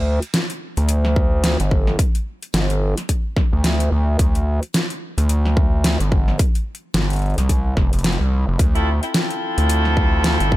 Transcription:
Already playing: D2
0.22 closed hi-hat
0.34 snare, closed hi-hat
0.50 closed hi-hat
0.77 D2, closed hi-hat
0.89 closed hi-hat
1.05 snare
1.16 kick
1.44 snare, closed hi-hat
1.60 G1, closed hi-hat
1.71 kick
1.87 snare
1.99 kick, closed hi-hat
2.15 closed hi-hat
2.42 closed hi-hat
2.54 G1, snare, closed hi-hat
2.70 closed hi-hat
2.98 snare, closed hi-hat
3.09 kick, closed hi-hat
3.37 kick, snare
3.53 D2
3.64 snare, closed hi-hat
3.80 closed hi-hat
3.92 D2
4.19 D2, kick, closed hi-hat
4.35 closed hi-hat
4.63 closed hi-hat
4.74 snare, closed hi-hat
4.90 closed hi-hat
5.18 D2, closed hi-hat
5.29 closed hi-hat
5.45 snare
5.57 kick
5.84 snare, closed hi-hat
6.00 G1, closed hi-hat
6.12 kick
6.28 snare
6.39 kick, closed hi-hat
6.55 closed hi-hat
6.75 closed hi-hat
6.94 G1, snare, closed hi-hat
7.10 closed hi-hat
7.13 closed hi-hat
7.16 closed hi-hat
7.19 closed hi-hat
7.22 closed hi-hat
7.26 closed hi-hat
7.30 closed hi-hat
7.34 closed hi-hat
7.38 C2, snare, closed hi-hat
7.49 kick, closed hi-hat
7.77 F1, kick, snare
7.93 F1, closed hi-hat
7.99 closed hi-hat
8.04 snare, closed hi-hat
8.12 closed hi-hat
8.21 C2
8.48 F1
8.59 D2, kick, closed hi-hat
8.75 C4 E4 F4 A4, closed hi-hat
9.03 C4 E4 F4 A4, closed hi-hat
9.14 snare, closed hi-hat
9.30 closed hi-hat
9.58 D2, closed hi-hat
9.69 closed hi-hat
9.85 snare
9.97 kick
10.24 snare, closed hi-hat
10.40 G1, closed hi-hat
10.52 kick

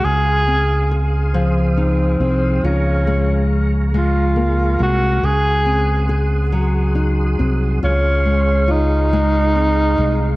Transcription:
Already playing: G#3 C4 G#4 F5 C6
0.05 C#2 G#4 D#6
0.48 C4
0.91 G#4
1.34 F3 C4
1.78 D#4
2.20 C2 C4
2.63 C#2 C#4 F4 A#5 C#6
3.07 G#3
3.94 G#3 F4
4.36 A#3
4.79 C2 G#3 F#4
5.23 C#2 G#4 F#5 C6 D#6
5.65 C4
6.09 G#4
6.53 F#3
6.95 D#4
7.39 C2 C4
7.83 C#2 C#4 F4 G#4 F5 C#6
8.26 G#3
8.68 D#4 F4
9.13 G#3
9.55 C4
9.98 C2 G#3

